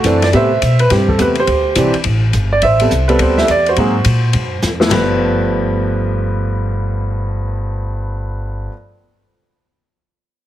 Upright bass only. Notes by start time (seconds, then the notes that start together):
0.04 F#2
0.33 A2
0.62 B2
0.91 G2
1.19 E2
1.47 D2
1.76 C2
1.94 muted upright bass stroke
2.04 A1
2.33 G1
2.62 A1
2.91 C2
3.20 D2
3.48 E2
3.77 G#2
4.05 A#2
4.34 F#2
4.62 F2
4.90 G1